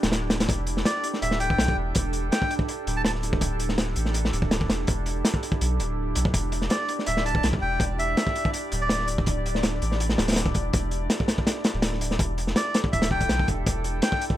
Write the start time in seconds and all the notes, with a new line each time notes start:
Already playing: D4 E4 G4 D5
0.03 D1, snare, closed hi-hat
0.12 snare, closed hi-hat
0.30 snare, closed hi-hat
0.40 snare, closed hi-hat
0.49 E1 A4, kick, closed hi-hat
0.67 closed hi-hat
0.77 snare
0.85 D5, snare, closed hi-hat
1.04 closed hi-hat
1.14 snare
1.22 D1 E5, closed hi-hat
1.31 snare
1.40 G5, closed hi-hat
1.50 kick
1.58 B1, snare, closed hi-hat
1.68 kick
1.77 E1
1.95 E1, kick, closed hi-hat
2.13 closed hi-hat
2.32 G5, snare, closed hi-hat
2.42 kick
2.51 closed hi-hat
2.59 kick
2.69 closed hi-hat
2.87 D1, closed hi-hat
2.96 A5
3.05 A5, snare, closed hi-hat
3.15 snare
3.23 closed hi-hat
3.33 kick
3.41 kick, closed hi-hat
3.60 closed hi-hat
3.69 snare
3.78 snare, closed hi-hat
3.96 A1, closed hi-hat
4.06 snare
4.14 closed hi-hat
4.25 snare
4.33 D1, closed hi-hat
4.42 kick
4.51 snare, closed hi-hat
4.61 kick
4.70 E1, snare, closed hi-hat
4.87 E1, kick, closed hi-hat
5.06 closed hi-hat
5.25 snare, closed hi-hat
5.34 kick
5.43 closed hi-hat
5.52 kick
5.61 B1, closed hi-hat
5.79 D1, closed hi-hat
6.15 B1, closed hi-hat
6.25 kick
6.34 E1 D5, kick, closed hi-hat
6.52 closed hi-hat
6.62 snare
6.70 D5, snare, closed hi-hat
6.89 closed hi-hat
6.99 snare
7.06 D1 E5, closed hi-hat
7.17 snare
7.25 A5, closed hi-hat
7.35 kick
7.43 B1, snare, closed hi-hat
7.53 kick
7.62 E1 G5
7.80 E1, kick, closed hi-hat
7.99 E5, closed hi-hat
8.17 snare, closed hi-hat
8.27 kick
8.36 closed hi-hat
8.45 kick
8.54 closed hi-hat
8.72 D1, closed hi-hat
8.81 D5
8.89 snare, closed hi-hat
9.00 snare
9.08 closed hi-hat
9.18 kick
9.26 kick, closed hi-hat
9.46 closed hi-hat
9.55 snare
9.63 snare, closed hi-hat
9.82 A1, closed hi-hat
9.92 snare
10.00 closed hi-hat
10.09 snare
10.18 D1, snare, closed hi-hat
10.28 snare, closed hi-hat
10.32 snare, closed hi-hat
10.36 snare, closed hi-hat
10.46 kick
10.54 E1, kick, closed hi-hat
10.73 E1, kick, closed hi-hat
10.91 closed hi-hat
11.10 snare, closed hi-hat
11.20 kick
11.28 snare, closed hi-hat
11.38 kick
11.47 snare, closed hi-hat
11.64 snare, closed hi-hat
11.74 D1
11.82 snare, closed hi-hat
11.93 snare
12.01 closed hi-hat
12.11 snare
12.19 E1 D4 E4 G4 A4, kick, closed hi-hat
12.38 closed hi-hat
12.47 snare
12.56 D5, snare, closed hi-hat
12.74 snare, closed hi-hat
12.84 kick
12.92 D1 E5, kick, closed hi-hat
13.02 snare, closed hi-hat
13.11 G5, kick
13.20 kick, closed hi-hat
13.29 B1, snare, closed hi-hat
13.39 kick
13.48 E1, kick, closed hi-hat
13.66 E1, kick, closed hi-hat
13.84 closed hi-hat
14.02 G5, snare, closed hi-hat
14.12 kick
14.21 closed hi-hat
14.30 kick